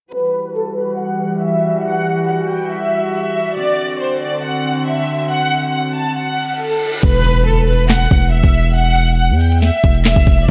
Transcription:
0.13 string section E3 G3 F#4, violin section B4
0.56 violin section A4
0.77 violin section B4
0.99 violin section F#5
1.42 violin section E5
1.85 violin section F#5
2.28 violin section F#5
2.50 violin section G5
2.71 violin section E5
3.15 violin section E5
3.58 string section D3 C4, violin section D5
4.01 violin section C5
4.23 violin section D5
4.45 violin section F#5
4.88 violin section E5
5.31 violin section F#5
5.74 violin section F#5
5.95 violin section A5
6.17 violin section F#5, reverse cymbal
6.60 violin section A4
7.03 808-style bass E1, violin section B4, kick, closed hi-hat, crash, impact
7.25 closed hi-hat
7.46 violin section A4
7.68 violin section B4, closed hi-hat
7.73 closed hi-hat
7.79 closed hi-hat
7.84 closed hi-hat
7.89 violin section F#5, snare, clap, closed hi-hat
8.11 808-style bass E1, kick
8.22 closed hi-hat
8.33 violin section E5
8.44 808-style bass E1, kick
8.54 closed hi-hat
8.76 violin section F#5, closed hi-hat
9.08 closed hi-hat
9.19 violin section F#5
9.30 808-style bass E2
9.41 violin section G5, closed hi-hat
9.52 closed hi-hat
9.62 violin section E5, snare
9.84 808-style bass E1, kick
9.95 closed hi-hat
10.05 violin section E5, snare, clap
10.16 808-style bass E1, kick, closed hi-hat
10.27 808-style bass E1, kick

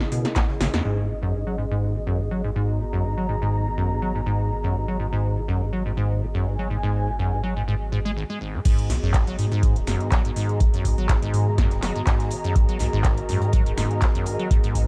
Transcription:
Already playing: ambient pad C#3 B3 E4 A#4, analog synth pad C#4 G#4 D#5
0.00 acid bass D#3, snare
0.12 acid bass B2, closed hi-hat, open hi-hat
0.25 acid bass C#3, snare, closed hi-hat
0.36 acid bass B3, kick, snare, clap, closed hi-hat
0.48 acid bass C#3, snare
0.60 sub bass G#1, acid bass C#3, snare, closed hi-hat, open hi-hat
0.74 sub bass E2, snare, closed hi-hat
0.85 sub bass G#1, acid bass G#2, ambient pad D#3 B3 F#4 G#4
1.09 acid bass A#2
1.22 acid bass F#2
1.34 acid bass G#2
1.47 acid bass F#3
1.58 acid bass G#2
1.71 acid bass G#2
1.96 acid bass A#2
2.07 acid bass F#2
2.20 acid bass G#2
2.31 acid bass F#3
2.44 acid bass G#2, analog synth pad A#5
2.56 acid bass G#2
2.80 acid bass A#2
2.93 acid bass F#2
3.04 acid bass G#2
3.17 acid bass F#3
3.29 acid bass G#2
3.42 acid bass G#2
3.66 acid bass A#2
3.78 acid bass F#2
3.91 acid bass G#2
4.02 acid bass F#3
4.15 acid bass G#2
4.26 acid bass G#2
4.51 acid bass A#2
4.64 acid bass F#2
4.75 acid bass G#2
4.88 acid bass F#3
5.00 acid bass G#2
5.13 acid bass G#2
5.37 acid bass A#2
5.48 acid bass F#2
5.61 acid bass G#2
5.73 acid bass F#3
5.86 acid bass G#2
5.97 acid bass G#2
6.21 acid bass A#2
6.28 analog synth pad G#5
6.35 acid bass F#2
6.46 acid bass G#2
6.59 acid bass F#3
6.70 acid bass G#2
6.83 acid bass G#2
7.08 acid bass A#2
7.19 acid bass F#2
7.32 acid bass G#2
7.43 acid bass F#3
7.57 acid bass G#2
7.68 acid bass G#2
7.92 acid bass G#2
8.05 acid bass G#3
8.17 acid bass G#1
8.30 acid bass G#3
8.41 acid bass G#1
8.54 acid bass A#2
8.65 sub bass G#1, acid bass G#2, ambient pad D#3 B3 F#4 G#4, analog synth pad G#4, kick, closed hi-hat, crash
8.75 analog synth pad D#5, closed hi-hat
8.90 sub bass B1, acid bass A#2, snare, closed hi-hat, open hi-hat
9.03 sub bass G#1, acid bass F#2
9.14 acid bass G#2, kick, snare, clap, closed hi-hat
9.19 analog synth pad A#5
9.27 acid bass F#3, closed hi-hat
9.39 sub bass G#2, acid bass G#2, closed hi-hat, open hi-hat
9.51 acid bass G#2, closed hi-hat
9.63 kick, closed hi-hat
9.76 sub bass D#1, acid bass A#2, closed hi-hat
9.87 sub bass F#1, acid bass F#2, finger snap, snare, closed hi-hat, open hi-hat
10.00 acid bass G#2, closed hi-hat
10.12 acid bass F#3, kick, snare, clap, closed hi-hat
10.25 acid bass G#2, closed hi-hat
10.36 acid bass G#2, closed hi-hat, open hi-hat
10.49 closed hi-hat
10.60 sub bass G#1, acid bass A#2, kick, closed hi-hat
10.74 acid bass F#2, closed hi-hat
10.85 sub bass B1, acid bass G#2, kick, closed hi-hat, open hi-hat
10.98 sub bass G#1, acid bass F#3, closed hi-hat
11.09 acid bass G#2, finger snap, kick, snare, clap, closed hi-hat
11.22 acid bass G#2, closed hi-hat
11.34 sub bass G#2, closed hi-hat, open hi-hat
11.47 acid bass A#2
11.58 acid bass F#2, kick, snare, closed hi-hat
11.71 sub bass D#1, acid bass G#2, snare, closed hi-hat
11.82 sub bass F#1, acid bass F#3, finger snap, snare, clap, closed hi-hat, open hi-hat
11.96 acid bass G#2, closed hi-hat
12.07 acid bass G#2, kick, snare, clap, closed hi-hat
12.20 snare, closed hi-hat
12.31 acid bass A#2, closed hi-hat, open hi-hat
12.44 acid bass F#2, closed hi-hat
12.56 sub bass G#1, acid bass G#2, ambient pad A#4, kick, closed hi-hat
12.69 acid bass F#3, closed hi-hat
12.79 sub bass B1, acid bass G#2, snare, closed hi-hat, open hi-hat
12.93 sub bass G#1, acid bass G#2
13.04 kick, snare, clap, closed hi-hat
13.17 acid bass A#2, closed hi-hat
13.29 acid bass F#2, sub bass G#2, closed hi-hat, open hi-hat
13.42 acid bass G#2, closed hi-hat
13.53 acid bass F#3, kick, closed hi-hat
13.66 sub bass D#1, acid bass G#2, closed hi-hat
13.77 sub bass F#1, acid bass G#2, finger snap, snare, closed hi-hat, open hi-hat
13.91 closed hi-hat
14.02 acid bass A#2, kick, snare, clap, closed hi-hat
14.15 acid bass F#2, closed hi-hat
14.26 acid bass G#2, closed hi-hat, open hi-hat
14.39 acid bass F#3, closed hi-hat
14.51 sub bass G#1, acid bass G#2, kick, closed hi-hat
14.64 acid bass G#2, closed hi-hat
14.75 sub bass B1, kick, closed hi-hat, open hi-hat

